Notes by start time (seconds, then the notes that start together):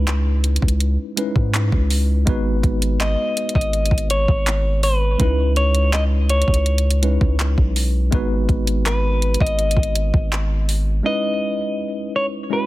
Already playing: C#2 G#3 C#4 D#4 E4 B4
0.07 clap, closed hi-hat
0.44 closed hi-hat, open hi-hat
0.56 closed hi-hat
0.62 C#2, kick
0.68 closed hi-hat
0.80 closed hi-hat
1.17 G#3 C#4 D#4 E4 B4, closed hi-hat
1.36 G#2, kick
1.54 clap, closed hi-hat
1.72 C#2, kick
1.90 open hi-hat
2.25 G#1 G#3 B3 D#4 F#4 B4, kick, closed hi-hat
2.63 G#1, kick, closed hi-hat
2.82 closed hi-hat
3.00 D#5, clap, closed hi-hat
3.37 closed hi-hat
3.49 closed hi-hat
3.55 G#1 D#5, kick
3.61 closed hi-hat
3.73 closed hi-hat
3.86 closed hi-hat
3.91 G#1, kick
3.98 closed hi-hat
4.10 C#5, closed hi-hat
4.28 G#1, kick
4.47 clap, closed hi-hat
4.83 B4, open hi-hat
5.18 C#2 G#3 C#4 D#4 E4 B4, kick, closed hi-hat
5.56 C#5, closed hi-hat
5.75 closed hi-hat
5.93 D#5, clap, closed hi-hat
6.29 C#5, closed hi-hat
6.42 closed hi-hat
6.48 C#2, kick
6.54 closed hi-hat
6.66 closed hi-hat
6.78 closed hi-hat
6.91 closed hi-hat
7.02 G#3 C#4 D#4 E4 B4, closed hi-hat
7.21 C#2, kick
7.39 clap, closed hi-hat
7.58 B1, kick
7.76 open hi-hat
8.11 G#1 G#3 B3 D#4 F#4 B4, kick, closed hi-hat
8.49 G#1, kick, closed hi-hat
8.67 closed hi-hat
8.86 B4, clap, closed hi-hat
9.22 closed hi-hat
9.34 closed hi-hat
9.41 G#1 D#5, kick
9.47 closed hi-hat
9.59 closed hi-hat
9.71 closed hi-hat
9.77 G#1, kick
9.83 closed hi-hat
9.96 closed hi-hat
10.14 G#1, kick
10.32 clap, closed hi-hat
10.69 open hi-hat
11.03 G#3 C#4 D#4 E4 B4 D#5
12.16 C#5
12.50 G#3 C#4 E4 F#4 B4